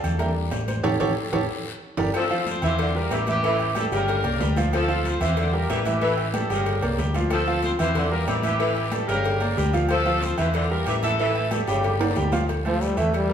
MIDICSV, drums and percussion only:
0, 0, Header, 1, 2, 480
1, 0, Start_track
1, 0, Key_signature, -1, "minor"
1, 0, Tempo, 323276
1, 1262, Time_signature, 4, 2, 24, 8
1, 19795, End_track
2, 0, Start_track
2, 0, Title_t, "Drums"
2, 58, Note_on_c, 9, 63, 37
2, 58, Note_on_c, 9, 64, 92
2, 59, Note_on_c, 9, 68, 112
2, 63, Note_on_c, 9, 73, 77
2, 207, Note_off_c, 9, 63, 0
2, 207, Note_off_c, 9, 64, 0
2, 208, Note_off_c, 9, 68, 0
2, 211, Note_off_c, 9, 73, 0
2, 286, Note_on_c, 9, 56, 107
2, 294, Note_on_c, 9, 68, 70
2, 294, Note_on_c, 9, 74, 75
2, 301, Note_on_c, 9, 63, 35
2, 301, Note_on_c, 9, 64, 73
2, 434, Note_off_c, 9, 56, 0
2, 442, Note_off_c, 9, 68, 0
2, 442, Note_off_c, 9, 74, 0
2, 450, Note_off_c, 9, 63, 0
2, 450, Note_off_c, 9, 64, 0
2, 534, Note_on_c, 9, 63, 33
2, 683, Note_off_c, 9, 63, 0
2, 762, Note_on_c, 9, 66, 72
2, 762, Note_on_c, 9, 68, 98
2, 771, Note_on_c, 9, 56, 69
2, 772, Note_on_c, 9, 73, 72
2, 778, Note_on_c, 9, 63, 38
2, 911, Note_off_c, 9, 66, 0
2, 911, Note_off_c, 9, 68, 0
2, 920, Note_off_c, 9, 56, 0
2, 921, Note_off_c, 9, 73, 0
2, 927, Note_off_c, 9, 63, 0
2, 1009, Note_on_c, 9, 68, 71
2, 1010, Note_on_c, 9, 73, 73
2, 1013, Note_on_c, 9, 63, 82
2, 1015, Note_on_c, 9, 56, 72
2, 1157, Note_off_c, 9, 68, 0
2, 1159, Note_off_c, 9, 73, 0
2, 1161, Note_off_c, 9, 63, 0
2, 1163, Note_off_c, 9, 56, 0
2, 1245, Note_on_c, 9, 65, 102
2, 1251, Note_on_c, 9, 56, 104
2, 1254, Note_on_c, 9, 74, 109
2, 1258, Note_on_c, 9, 64, 103
2, 1393, Note_off_c, 9, 65, 0
2, 1400, Note_off_c, 9, 56, 0
2, 1402, Note_off_c, 9, 74, 0
2, 1407, Note_off_c, 9, 64, 0
2, 1491, Note_on_c, 9, 65, 103
2, 1495, Note_on_c, 9, 64, 98
2, 1496, Note_on_c, 9, 74, 107
2, 1502, Note_on_c, 9, 56, 106
2, 1639, Note_off_c, 9, 65, 0
2, 1644, Note_off_c, 9, 64, 0
2, 1645, Note_off_c, 9, 74, 0
2, 1651, Note_off_c, 9, 56, 0
2, 1974, Note_on_c, 9, 56, 92
2, 1975, Note_on_c, 9, 64, 101
2, 1976, Note_on_c, 9, 65, 98
2, 1981, Note_on_c, 9, 74, 110
2, 2122, Note_off_c, 9, 56, 0
2, 2123, Note_off_c, 9, 64, 0
2, 2125, Note_off_c, 9, 65, 0
2, 2129, Note_off_c, 9, 74, 0
2, 2930, Note_on_c, 9, 65, 101
2, 2931, Note_on_c, 9, 64, 98
2, 2937, Note_on_c, 9, 56, 99
2, 2941, Note_on_c, 9, 74, 98
2, 3078, Note_off_c, 9, 65, 0
2, 3080, Note_off_c, 9, 64, 0
2, 3086, Note_off_c, 9, 56, 0
2, 3090, Note_off_c, 9, 74, 0
2, 3175, Note_on_c, 9, 68, 113
2, 3179, Note_on_c, 9, 63, 40
2, 3179, Note_on_c, 9, 74, 78
2, 3188, Note_on_c, 9, 56, 119
2, 3324, Note_off_c, 9, 68, 0
2, 3327, Note_off_c, 9, 74, 0
2, 3328, Note_off_c, 9, 63, 0
2, 3336, Note_off_c, 9, 56, 0
2, 3415, Note_on_c, 9, 68, 83
2, 3419, Note_on_c, 9, 63, 36
2, 3563, Note_off_c, 9, 68, 0
2, 3567, Note_off_c, 9, 63, 0
2, 3661, Note_on_c, 9, 63, 65
2, 3665, Note_on_c, 9, 73, 82
2, 3668, Note_on_c, 9, 56, 74
2, 3810, Note_off_c, 9, 63, 0
2, 3813, Note_off_c, 9, 73, 0
2, 3817, Note_off_c, 9, 56, 0
2, 3893, Note_on_c, 9, 68, 105
2, 3901, Note_on_c, 9, 63, 37
2, 3901, Note_on_c, 9, 64, 82
2, 3901, Note_on_c, 9, 73, 77
2, 4041, Note_off_c, 9, 68, 0
2, 4049, Note_off_c, 9, 63, 0
2, 4049, Note_off_c, 9, 64, 0
2, 4049, Note_off_c, 9, 73, 0
2, 4137, Note_on_c, 9, 68, 76
2, 4138, Note_on_c, 9, 63, 38
2, 4142, Note_on_c, 9, 56, 115
2, 4147, Note_on_c, 9, 74, 79
2, 4285, Note_off_c, 9, 68, 0
2, 4287, Note_off_c, 9, 63, 0
2, 4291, Note_off_c, 9, 56, 0
2, 4296, Note_off_c, 9, 74, 0
2, 4381, Note_on_c, 9, 63, 37
2, 4530, Note_off_c, 9, 63, 0
2, 4614, Note_on_c, 9, 63, 39
2, 4618, Note_on_c, 9, 66, 70
2, 4618, Note_on_c, 9, 68, 106
2, 4627, Note_on_c, 9, 56, 77
2, 4629, Note_on_c, 9, 73, 77
2, 4763, Note_off_c, 9, 63, 0
2, 4767, Note_off_c, 9, 66, 0
2, 4767, Note_off_c, 9, 68, 0
2, 4775, Note_off_c, 9, 56, 0
2, 4777, Note_off_c, 9, 73, 0
2, 4853, Note_on_c, 9, 68, 67
2, 4859, Note_on_c, 9, 63, 90
2, 4859, Note_on_c, 9, 73, 78
2, 4867, Note_on_c, 9, 56, 65
2, 5002, Note_off_c, 9, 68, 0
2, 5008, Note_off_c, 9, 63, 0
2, 5008, Note_off_c, 9, 73, 0
2, 5015, Note_off_c, 9, 56, 0
2, 5108, Note_on_c, 9, 56, 122
2, 5108, Note_on_c, 9, 74, 76
2, 5112, Note_on_c, 9, 63, 39
2, 5256, Note_off_c, 9, 74, 0
2, 5257, Note_off_c, 9, 56, 0
2, 5261, Note_off_c, 9, 63, 0
2, 5337, Note_on_c, 9, 68, 82
2, 5350, Note_on_c, 9, 63, 36
2, 5485, Note_off_c, 9, 68, 0
2, 5499, Note_off_c, 9, 63, 0
2, 5570, Note_on_c, 9, 68, 109
2, 5584, Note_on_c, 9, 73, 82
2, 5588, Note_on_c, 9, 63, 99
2, 5592, Note_on_c, 9, 56, 72
2, 5719, Note_off_c, 9, 68, 0
2, 5733, Note_off_c, 9, 73, 0
2, 5736, Note_off_c, 9, 63, 0
2, 5741, Note_off_c, 9, 56, 0
2, 5822, Note_on_c, 9, 73, 81
2, 5827, Note_on_c, 9, 56, 74
2, 5835, Note_on_c, 9, 63, 35
2, 5970, Note_off_c, 9, 73, 0
2, 5975, Note_off_c, 9, 56, 0
2, 5984, Note_off_c, 9, 63, 0
2, 6059, Note_on_c, 9, 68, 92
2, 6062, Note_on_c, 9, 63, 36
2, 6066, Note_on_c, 9, 74, 77
2, 6076, Note_on_c, 9, 56, 116
2, 6208, Note_off_c, 9, 68, 0
2, 6210, Note_off_c, 9, 63, 0
2, 6215, Note_off_c, 9, 74, 0
2, 6225, Note_off_c, 9, 56, 0
2, 6296, Note_on_c, 9, 68, 119
2, 6308, Note_on_c, 9, 63, 35
2, 6444, Note_off_c, 9, 68, 0
2, 6457, Note_off_c, 9, 63, 0
2, 6540, Note_on_c, 9, 66, 73
2, 6541, Note_on_c, 9, 63, 89
2, 6542, Note_on_c, 9, 73, 76
2, 6545, Note_on_c, 9, 56, 67
2, 6688, Note_off_c, 9, 66, 0
2, 6690, Note_off_c, 9, 63, 0
2, 6690, Note_off_c, 9, 73, 0
2, 6694, Note_off_c, 9, 56, 0
2, 6772, Note_on_c, 9, 63, 88
2, 6779, Note_on_c, 9, 68, 83
2, 6782, Note_on_c, 9, 73, 71
2, 6789, Note_on_c, 9, 56, 68
2, 6920, Note_off_c, 9, 63, 0
2, 6927, Note_off_c, 9, 68, 0
2, 6930, Note_off_c, 9, 73, 0
2, 6938, Note_off_c, 9, 56, 0
2, 7019, Note_on_c, 9, 63, 39
2, 7024, Note_on_c, 9, 74, 78
2, 7026, Note_on_c, 9, 68, 110
2, 7032, Note_on_c, 9, 56, 123
2, 7167, Note_off_c, 9, 63, 0
2, 7173, Note_off_c, 9, 74, 0
2, 7174, Note_off_c, 9, 68, 0
2, 7180, Note_off_c, 9, 56, 0
2, 7253, Note_on_c, 9, 68, 82
2, 7266, Note_on_c, 9, 63, 35
2, 7401, Note_off_c, 9, 68, 0
2, 7414, Note_off_c, 9, 63, 0
2, 7499, Note_on_c, 9, 63, 60
2, 7499, Note_on_c, 9, 73, 75
2, 7507, Note_on_c, 9, 56, 77
2, 7648, Note_off_c, 9, 63, 0
2, 7648, Note_off_c, 9, 73, 0
2, 7655, Note_off_c, 9, 56, 0
2, 7733, Note_on_c, 9, 68, 101
2, 7741, Note_on_c, 9, 73, 81
2, 7746, Note_on_c, 9, 63, 35
2, 7746, Note_on_c, 9, 64, 82
2, 7881, Note_off_c, 9, 68, 0
2, 7889, Note_off_c, 9, 73, 0
2, 7895, Note_off_c, 9, 63, 0
2, 7895, Note_off_c, 9, 64, 0
2, 7970, Note_on_c, 9, 74, 72
2, 7973, Note_on_c, 9, 56, 109
2, 7977, Note_on_c, 9, 68, 77
2, 7983, Note_on_c, 9, 63, 37
2, 8118, Note_off_c, 9, 74, 0
2, 8122, Note_off_c, 9, 56, 0
2, 8126, Note_off_c, 9, 68, 0
2, 8131, Note_off_c, 9, 63, 0
2, 8220, Note_on_c, 9, 63, 36
2, 8369, Note_off_c, 9, 63, 0
2, 8456, Note_on_c, 9, 63, 39
2, 8460, Note_on_c, 9, 66, 69
2, 8460, Note_on_c, 9, 68, 105
2, 8462, Note_on_c, 9, 56, 72
2, 8463, Note_on_c, 9, 73, 81
2, 8605, Note_off_c, 9, 63, 0
2, 8608, Note_off_c, 9, 66, 0
2, 8608, Note_off_c, 9, 68, 0
2, 8611, Note_off_c, 9, 56, 0
2, 8611, Note_off_c, 9, 73, 0
2, 8692, Note_on_c, 9, 68, 73
2, 8698, Note_on_c, 9, 63, 89
2, 8698, Note_on_c, 9, 73, 79
2, 8706, Note_on_c, 9, 56, 64
2, 8840, Note_off_c, 9, 68, 0
2, 8846, Note_off_c, 9, 63, 0
2, 8847, Note_off_c, 9, 73, 0
2, 8854, Note_off_c, 9, 56, 0
2, 8931, Note_on_c, 9, 56, 108
2, 8935, Note_on_c, 9, 63, 40
2, 8944, Note_on_c, 9, 74, 78
2, 9079, Note_off_c, 9, 56, 0
2, 9084, Note_off_c, 9, 63, 0
2, 9092, Note_off_c, 9, 74, 0
2, 9166, Note_on_c, 9, 68, 90
2, 9167, Note_on_c, 9, 63, 36
2, 9315, Note_off_c, 9, 63, 0
2, 9315, Note_off_c, 9, 68, 0
2, 9410, Note_on_c, 9, 63, 106
2, 9411, Note_on_c, 9, 56, 72
2, 9413, Note_on_c, 9, 68, 112
2, 9422, Note_on_c, 9, 73, 78
2, 9559, Note_off_c, 9, 63, 0
2, 9560, Note_off_c, 9, 56, 0
2, 9561, Note_off_c, 9, 68, 0
2, 9571, Note_off_c, 9, 73, 0
2, 9655, Note_on_c, 9, 56, 71
2, 9661, Note_on_c, 9, 63, 36
2, 9668, Note_on_c, 9, 73, 80
2, 9803, Note_off_c, 9, 56, 0
2, 9810, Note_off_c, 9, 63, 0
2, 9816, Note_off_c, 9, 73, 0
2, 9891, Note_on_c, 9, 68, 93
2, 9895, Note_on_c, 9, 56, 109
2, 9897, Note_on_c, 9, 74, 80
2, 9899, Note_on_c, 9, 63, 36
2, 10040, Note_off_c, 9, 68, 0
2, 10043, Note_off_c, 9, 56, 0
2, 10046, Note_off_c, 9, 74, 0
2, 10048, Note_off_c, 9, 63, 0
2, 10133, Note_on_c, 9, 68, 121
2, 10135, Note_on_c, 9, 63, 35
2, 10281, Note_off_c, 9, 68, 0
2, 10284, Note_off_c, 9, 63, 0
2, 10369, Note_on_c, 9, 66, 68
2, 10371, Note_on_c, 9, 63, 90
2, 10373, Note_on_c, 9, 56, 73
2, 10377, Note_on_c, 9, 73, 81
2, 10518, Note_off_c, 9, 66, 0
2, 10519, Note_off_c, 9, 63, 0
2, 10522, Note_off_c, 9, 56, 0
2, 10525, Note_off_c, 9, 73, 0
2, 10607, Note_on_c, 9, 68, 84
2, 10608, Note_on_c, 9, 56, 73
2, 10614, Note_on_c, 9, 63, 86
2, 10617, Note_on_c, 9, 73, 78
2, 10755, Note_off_c, 9, 68, 0
2, 10757, Note_off_c, 9, 56, 0
2, 10763, Note_off_c, 9, 63, 0
2, 10766, Note_off_c, 9, 73, 0
2, 10845, Note_on_c, 9, 56, 115
2, 10848, Note_on_c, 9, 63, 39
2, 10848, Note_on_c, 9, 74, 78
2, 10853, Note_on_c, 9, 68, 112
2, 10994, Note_off_c, 9, 56, 0
2, 10997, Note_off_c, 9, 63, 0
2, 10997, Note_off_c, 9, 74, 0
2, 11001, Note_off_c, 9, 68, 0
2, 11089, Note_on_c, 9, 68, 80
2, 11099, Note_on_c, 9, 63, 36
2, 11237, Note_off_c, 9, 68, 0
2, 11247, Note_off_c, 9, 63, 0
2, 11322, Note_on_c, 9, 56, 75
2, 11335, Note_on_c, 9, 73, 78
2, 11337, Note_on_c, 9, 63, 66
2, 11470, Note_off_c, 9, 56, 0
2, 11484, Note_off_c, 9, 73, 0
2, 11486, Note_off_c, 9, 63, 0
2, 11568, Note_on_c, 9, 68, 102
2, 11571, Note_on_c, 9, 63, 37
2, 11571, Note_on_c, 9, 64, 82
2, 11571, Note_on_c, 9, 73, 84
2, 11716, Note_off_c, 9, 68, 0
2, 11720, Note_off_c, 9, 63, 0
2, 11720, Note_off_c, 9, 64, 0
2, 11720, Note_off_c, 9, 73, 0
2, 11805, Note_on_c, 9, 74, 79
2, 11808, Note_on_c, 9, 56, 103
2, 11808, Note_on_c, 9, 63, 36
2, 11808, Note_on_c, 9, 64, 75
2, 11813, Note_on_c, 9, 68, 74
2, 11954, Note_off_c, 9, 74, 0
2, 11956, Note_off_c, 9, 56, 0
2, 11956, Note_off_c, 9, 63, 0
2, 11956, Note_off_c, 9, 64, 0
2, 11961, Note_off_c, 9, 68, 0
2, 12044, Note_on_c, 9, 63, 35
2, 12192, Note_off_c, 9, 63, 0
2, 12282, Note_on_c, 9, 63, 35
2, 12288, Note_on_c, 9, 66, 77
2, 12288, Note_on_c, 9, 68, 108
2, 12289, Note_on_c, 9, 73, 73
2, 12293, Note_on_c, 9, 56, 72
2, 12431, Note_off_c, 9, 63, 0
2, 12437, Note_off_c, 9, 66, 0
2, 12437, Note_off_c, 9, 68, 0
2, 12438, Note_off_c, 9, 73, 0
2, 12441, Note_off_c, 9, 56, 0
2, 12514, Note_on_c, 9, 63, 87
2, 12524, Note_on_c, 9, 68, 75
2, 12535, Note_on_c, 9, 56, 68
2, 12535, Note_on_c, 9, 73, 70
2, 12663, Note_off_c, 9, 63, 0
2, 12672, Note_off_c, 9, 68, 0
2, 12683, Note_off_c, 9, 56, 0
2, 12683, Note_off_c, 9, 73, 0
2, 12759, Note_on_c, 9, 63, 36
2, 12769, Note_on_c, 9, 56, 113
2, 12777, Note_on_c, 9, 74, 77
2, 12907, Note_off_c, 9, 63, 0
2, 12917, Note_off_c, 9, 56, 0
2, 12925, Note_off_c, 9, 74, 0
2, 12998, Note_on_c, 9, 63, 36
2, 13002, Note_on_c, 9, 68, 84
2, 13147, Note_off_c, 9, 63, 0
2, 13151, Note_off_c, 9, 68, 0
2, 13239, Note_on_c, 9, 68, 108
2, 13240, Note_on_c, 9, 63, 101
2, 13253, Note_on_c, 9, 56, 76
2, 13253, Note_on_c, 9, 73, 80
2, 13387, Note_off_c, 9, 68, 0
2, 13388, Note_off_c, 9, 63, 0
2, 13402, Note_off_c, 9, 56, 0
2, 13402, Note_off_c, 9, 73, 0
2, 13493, Note_on_c, 9, 73, 82
2, 13494, Note_on_c, 9, 56, 77
2, 13495, Note_on_c, 9, 63, 35
2, 13641, Note_off_c, 9, 73, 0
2, 13643, Note_off_c, 9, 56, 0
2, 13643, Note_off_c, 9, 63, 0
2, 13727, Note_on_c, 9, 68, 89
2, 13731, Note_on_c, 9, 63, 35
2, 13740, Note_on_c, 9, 74, 75
2, 13742, Note_on_c, 9, 56, 113
2, 13875, Note_off_c, 9, 68, 0
2, 13880, Note_off_c, 9, 63, 0
2, 13889, Note_off_c, 9, 74, 0
2, 13890, Note_off_c, 9, 56, 0
2, 13966, Note_on_c, 9, 68, 121
2, 13969, Note_on_c, 9, 63, 36
2, 14114, Note_off_c, 9, 68, 0
2, 14117, Note_off_c, 9, 63, 0
2, 14214, Note_on_c, 9, 63, 88
2, 14223, Note_on_c, 9, 73, 80
2, 14226, Note_on_c, 9, 56, 67
2, 14363, Note_off_c, 9, 63, 0
2, 14372, Note_off_c, 9, 73, 0
2, 14374, Note_off_c, 9, 56, 0
2, 14449, Note_on_c, 9, 68, 82
2, 14454, Note_on_c, 9, 63, 87
2, 14461, Note_on_c, 9, 73, 77
2, 14467, Note_on_c, 9, 56, 69
2, 14598, Note_off_c, 9, 68, 0
2, 14602, Note_off_c, 9, 63, 0
2, 14610, Note_off_c, 9, 73, 0
2, 14615, Note_off_c, 9, 56, 0
2, 14679, Note_on_c, 9, 68, 106
2, 14700, Note_on_c, 9, 63, 38
2, 14704, Note_on_c, 9, 74, 72
2, 14708, Note_on_c, 9, 56, 110
2, 14828, Note_off_c, 9, 68, 0
2, 14849, Note_off_c, 9, 63, 0
2, 14853, Note_off_c, 9, 74, 0
2, 14856, Note_off_c, 9, 56, 0
2, 14933, Note_on_c, 9, 63, 38
2, 14933, Note_on_c, 9, 68, 89
2, 15081, Note_off_c, 9, 63, 0
2, 15081, Note_off_c, 9, 68, 0
2, 15176, Note_on_c, 9, 73, 85
2, 15177, Note_on_c, 9, 63, 68
2, 15181, Note_on_c, 9, 56, 74
2, 15324, Note_off_c, 9, 73, 0
2, 15325, Note_off_c, 9, 63, 0
2, 15330, Note_off_c, 9, 56, 0
2, 15408, Note_on_c, 9, 68, 105
2, 15414, Note_on_c, 9, 73, 81
2, 15418, Note_on_c, 9, 63, 37
2, 15418, Note_on_c, 9, 64, 91
2, 15556, Note_off_c, 9, 68, 0
2, 15562, Note_off_c, 9, 73, 0
2, 15567, Note_off_c, 9, 63, 0
2, 15567, Note_off_c, 9, 64, 0
2, 15646, Note_on_c, 9, 68, 76
2, 15656, Note_on_c, 9, 63, 34
2, 15656, Note_on_c, 9, 74, 78
2, 15660, Note_on_c, 9, 56, 112
2, 15795, Note_off_c, 9, 68, 0
2, 15804, Note_off_c, 9, 63, 0
2, 15805, Note_off_c, 9, 74, 0
2, 15809, Note_off_c, 9, 56, 0
2, 15892, Note_on_c, 9, 63, 38
2, 16041, Note_off_c, 9, 63, 0
2, 16125, Note_on_c, 9, 68, 96
2, 16134, Note_on_c, 9, 56, 67
2, 16134, Note_on_c, 9, 63, 39
2, 16137, Note_on_c, 9, 73, 77
2, 16274, Note_off_c, 9, 68, 0
2, 16282, Note_off_c, 9, 56, 0
2, 16283, Note_off_c, 9, 63, 0
2, 16285, Note_off_c, 9, 73, 0
2, 16373, Note_on_c, 9, 68, 67
2, 16375, Note_on_c, 9, 73, 76
2, 16381, Note_on_c, 9, 63, 84
2, 16383, Note_on_c, 9, 56, 70
2, 16522, Note_off_c, 9, 68, 0
2, 16523, Note_off_c, 9, 73, 0
2, 16529, Note_off_c, 9, 63, 0
2, 16532, Note_off_c, 9, 56, 0
2, 16618, Note_on_c, 9, 74, 75
2, 16620, Note_on_c, 9, 63, 41
2, 16621, Note_on_c, 9, 56, 111
2, 16766, Note_off_c, 9, 74, 0
2, 16768, Note_off_c, 9, 63, 0
2, 16769, Note_off_c, 9, 56, 0
2, 16852, Note_on_c, 9, 68, 82
2, 16861, Note_on_c, 9, 63, 36
2, 17001, Note_off_c, 9, 68, 0
2, 17009, Note_off_c, 9, 63, 0
2, 17091, Note_on_c, 9, 68, 109
2, 17098, Note_on_c, 9, 63, 100
2, 17099, Note_on_c, 9, 73, 79
2, 17105, Note_on_c, 9, 56, 74
2, 17239, Note_off_c, 9, 68, 0
2, 17247, Note_off_c, 9, 63, 0
2, 17247, Note_off_c, 9, 73, 0
2, 17253, Note_off_c, 9, 56, 0
2, 17335, Note_on_c, 9, 56, 77
2, 17335, Note_on_c, 9, 63, 38
2, 17338, Note_on_c, 9, 73, 81
2, 17484, Note_off_c, 9, 56, 0
2, 17484, Note_off_c, 9, 63, 0
2, 17487, Note_off_c, 9, 73, 0
2, 17569, Note_on_c, 9, 74, 78
2, 17575, Note_on_c, 9, 63, 35
2, 17584, Note_on_c, 9, 68, 86
2, 17586, Note_on_c, 9, 56, 115
2, 17717, Note_off_c, 9, 74, 0
2, 17724, Note_off_c, 9, 63, 0
2, 17733, Note_off_c, 9, 68, 0
2, 17735, Note_off_c, 9, 56, 0
2, 17824, Note_on_c, 9, 63, 36
2, 17827, Note_on_c, 9, 65, 110
2, 17827, Note_on_c, 9, 68, 122
2, 17972, Note_off_c, 9, 63, 0
2, 17975, Note_off_c, 9, 65, 0
2, 17975, Note_off_c, 9, 68, 0
2, 17978, Note_on_c, 9, 65, 78
2, 18050, Note_on_c, 9, 73, 76
2, 18053, Note_on_c, 9, 56, 72
2, 18059, Note_on_c, 9, 63, 89
2, 18127, Note_off_c, 9, 65, 0
2, 18143, Note_on_c, 9, 66, 74
2, 18199, Note_off_c, 9, 73, 0
2, 18201, Note_off_c, 9, 56, 0
2, 18208, Note_off_c, 9, 63, 0
2, 18291, Note_on_c, 9, 73, 77
2, 18292, Note_off_c, 9, 66, 0
2, 18297, Note_on_c, 9, 63, 88
2, 18301, Note_on_c, 9, 66, 80
2, 18301, Note_on_c, 9, 68, 84
2, 18311, Note_on_c, 9, 56, 66
2, 18440, Note_off_c, 9, 73, 0
2, 18445, Note_off_c, 9, 63, 0
2, 18450, Note_off_c, 9, 66, 0
2, 18450, Note_off_c, 9, 68, 0
2, 18460, Note_off_c, 9, 56, 0
2, 18536, Note_on_c, 9, 74, 70
2, 18546, Note_on_c, 9, 63, 39
2, 18548, Note_on_c, 9, 56, 106
2, 18551, Note_on_c, 9, 68, 102
2, 18684, Note_off_c, 9, 74, 0
2, 18695, Note_off_c, 9, 63, 0
2, 18697, Note_off_c, 9, 56, 0
2, 18699, Note_off_c, 9, 68, 0
2, 18793, Note_on_c, 9, 68, 82
2, 18941, Note_off_c, 9, 68, 0
2, 19022, Note_on_c, 9, 73, 77
2, 19024, Note_on_c, 9, 63, 60
2, 19027, Note_on_c, 9, 56, 69
2, 19171, Note_off_c, 9, 73, 0
2, 19172, Note_off_c, 9, 63, 0
2, 19175, Note_off_c, 9, 56, 0
2, 19257, Note_on_c, 9, 73, 81
2, 19260, Note_on_c, 9, 63, 37
2, 19260, Note_on_c, 9, 64, 85
2, 19265, Note_on_c, 9, 68, 102
2, 19406, Note_off_c, 9, 73, 0
2, 19409, Note_off_c, 9, 63, 0
2, 19409, Note_off_c, 9, 64, 0
2, 19413, Note_off_c, 9, 68, 0
2, 19503, Note_on_c, 9, 63, 36
2, 19503, Note_on_c, 9, 74, 72
2, 19514, Note_on_c, 9, 68, 67
2, 19515, Note_on_c, 9, 56, 111
2, 19652, Note_off_c, 9, 63, 0
2, 19652, Note_off_c, 9, 74, 0
2, 19662, Note_off_c, 9, 68, 0
2, 19663, Note_off_c, 9, 56, 0
2, 19795, End_track
0, 0, End_of_file